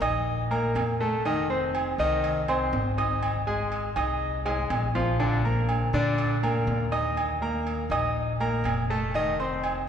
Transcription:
0.01 0.71 A#1 medium
0.01 0.42 D#4 medium
0.01 0.42 D#5 medium
0.01 0.42 D#6 medium
0.01 low agogo loud
0.51 0.91 A#3 medium
0.51 0.91 A#4 medium
0.51 0.92 A#5 medium
0.51 low agogo medium
0.75 1.93 F1 medium
0.75 low timbale medium
0.75 low agogo loud
1.00 1.21 A3 medium
1.00 1.21 A4 medium
1.00 1.21 A5 medium
1.25 1.45 D#3 medium
1.25 1.46 D#4 medium
1.25 1.46 D#5 medium
1.25 low agogo medium
1.50 1.90 C4 medium
1.50 1.90 C5 medium
1.50 1.91 C6 medium
1.75 low agogo loud
1.98 2.69 C2 medium
1.98 2.40 D#3 loud
1.98 2.40 D#4 medium
1.98 2.40 D#5 medium
2.24 low agogo medium
2.48 2.89 C4 medium
2.48 2.89 C5 medium
2.48 2.90 C6 medium
2.48 low agogo loud
2.73 3.90 G#1 loud
2.73 low timbale medium
2.98 3.38 D#4 medium
2.98 3.39 D#5 medium
2.98 3.39 D#6 medium
2.98 low agogo medium
3.23 low agogo loud
3.47 3.88 G#3 medium
3.47 3.88 G#4 medium
3.47 3.88 G#5 medium
3.72 low agogo medium
3.96 4.67 C2 loud
3.96 4.37 D#4 medium
3.96 4.37 D#5 medium
3.96 4.37 D#6 medium
3.96 low agogo loud
4.45 4.86 G#3 medium
4.45 4.86 G#4 medium
4.45 4.86 G#5 medium
4.45 high timbale medium
4.45 low agogo medium
4.70 5.87 A#1 medium
4.70 low timbale medium
4.70 low agogo loud
4.95 5.15 F3 medium
4.95 5.15 F4 medium
4.95 5.16 F5 medium
4.95 low timbale medium
5.19 5.40 D3 medium
5.19 5.40 D4 medium
5.19 5.40 D5 medium
5.19 low agogo medium
5.44 5.85 A#3 medium
5.44 5.85 A#4 medium
5.44 5.85 A#5 medium
5.69 low agogo loud
5.93 6.64 A#2 medium
5.93 6.34 D3 medium
5.93 6.34 D4 medium
5.93 6.35 D5 loud
6.18 low agogo medium
6.43 6.84 A#3 medium
6.43 6.84 A#4 medium
6.43 6.84 A#5 medium
6.43 low agogo loud
6.67 7.84 D#2 loud
6.67 low timbale medium
6.92 7.33 D#4 medium
6.92 7.33 D#5 medium
6.92 7.33 D#6 medium
6.92 low agogo medium
7.17 low agogo loud
7.42 7.82 A#3 medium
7.42 7.82 A#4 medium
7.42 7.83 A#5 medium
7.67 low agogo medium
7.90 8.60 A#1 loud
7.90 8.31 D#4 medium
7.90 8.32 D#5 medium
7.90 8.32 D#6 medium
7.90 low agogo loud
8.40 8.81 A#3 medium
8.40 8.81 A#4 medium
8.40 8.81 A#5 medium
8.40 low agogo medium
8.64 9.81 F1 medium
8.64 low timbale medium
8.64 low agogo loud
8.90 9.10 A3 medium
8.90 9.10 A4 medium
8.90 9.10 A5 medium
9.14 9.35 D#3 medium
9.14 9.35 D#4 medium
9.14 9.35 D#5 medium
9.14 low agogo medium
9.39 9.80 C4 medium
9.39 9.80 C5 medium
9.39 9.80 C6 medium
9.64 low agogo loud

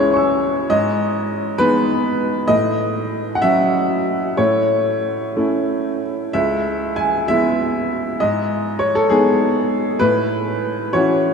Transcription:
0.00 0.73 C#2 medium
0.00 0.67 G#3 soft
0.00 0.67 C#4 soft
0.00 0.67 E4 medium
0.00 0.73 B4 medium
0.00 0.70 C#5 medium
0.10 0.66 G#5 soft
0.10 0.68 C#6 soft
0.16 0.70 E6 soft
0.70 1.57 G#2 medium
0.70 1.59 D#5 medium
1.58 2.45 G#3 medium
1.58 2.46 B3 medium
1.58 2.46 D#4 medium
1.58 2.49 B4 loud
2.48 3.39 A2 medium
2.48 3.34 D#5 loud
3.35 3.42 F#5 medium
3.42 4.34 F#3 soft
3.42 4.34 C#4 soft
3.42 4.34 F#4 medium
3.42 4.37 E5 medium
4.37 5.33 A2 medium
4.37 6.02 C#5 medium
5.36 6.30 A3 soft
5.36 6.31 C#4 soft
5.36 6.31 E4 soft
6.33 7.25 C#2 medium
6.33 6.97 E5 medium
6.96 7.28 G#5 medium
7.28 8.16 G#3 soft
7.28 8.16 B3 soft
7.28 8.16 E4 soft
7.28 8.19 E5 medium
8.20 9.08 G#2 medium
8.20 8.80 D#5 medium
8.79 8.94 C#5 medium
8.95 9.10 A4 medium
9.10 9.96 G#3 soft
9.10 9.97 B3 soft
9.10 9.97 D#4 medium
9.10 10.00 G#4 medium
9.99 10.91 A2 medium
9.99 10.93 B4 medium
10.93 11.34 E3 soft
10.93 11.34 C#4 soft
10.93 11.34 F#4 medium
10.93 11.34 C#5 medium

